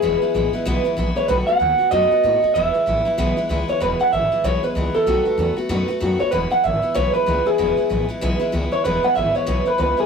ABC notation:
X:1
M:4/4
L:1/8
Q:"Swing" 1/4=191
K:E
V:1 name="Clean electric guitar"
G3 z4 c | B f3 d4 | e6- e c | B f e2 c B2 A- |
A3 z4 c | B f e2 c B2 G- | G3 z4 c | B f e c2 B B G |]
V:2 name="Steel-string acoustic guitar"
[E,,B,,E,G,B,E] [E,G,B,E] [E,G,B,E] [E,G,B,E] [E,,B,,E,G,B,E] [E,G,B,E] [E,G,B,E] [E,G,B,E] | [B,,D,A,B,F] [A,B,F] [D,A,B,F] [A,B,F] [B,,D,A,B,F] [A,B,F] [D,A,B,F] [A,B,F] | [E,,B,,E,G,B,E] [E,G,B,E] [E,G,B,E] [E,G,B,E] [E,,B,,E,G,B,E] [E,G,B,E] [E,G,B,E] [E,G,B,E] | [E,,B,,E,G,B,E] [E,G,B,E] [E,G,B,E] [E,G,B,E] [E,,B,,E,G,B,E] [E,G,B,E] [E,G,B,E] [E,G,B,E] |
[B,,D,A,B,F] [A,B,F] [D,A,B,F] [A,B,F] [B,,D,A,B,F] [A,B,F] [D,A,B,F] [A,B,F] | [E,,B,,E,G,B,E] [E,G,B,E] [E,G,B,E] [E,G,B,E] [E,,B,,E,G,B,E] [E,G,B,E] [E,G,B,E] [E,G,B,E] | [E,,B,,E,G,B,E] [E,G,B,E] [E,G,B,E] [E,G,B,E] [E,,B,,E,G,B,E] [E,G,B,E] [E,G,B,E] [E,G,B,E] | [E,,B,,E,G,B,E] [E,G,B,E] [E,G,B,E] [E,G,B,E] [E,,B,,E,G,B,E] [E,G,B,E] [E,G,B,E] [E,G,B,E] |]
V:3 name="Upright bass" clef=bass
E,,, z A,,, z B,,, z ^A,,, z | B,,, z D,, z F,, z A,, z | E,,, z A,,, z B,,, z C,, z | E,,, z G,,, z B,,, z C,, z |
B,,, z E,, z F,, z F,, z | E,,, z G,,, z B,,, z C,, z | E,,, z A,,, z B,,, z C,, z | E,,, z G,,, z B,,, z C,, z |]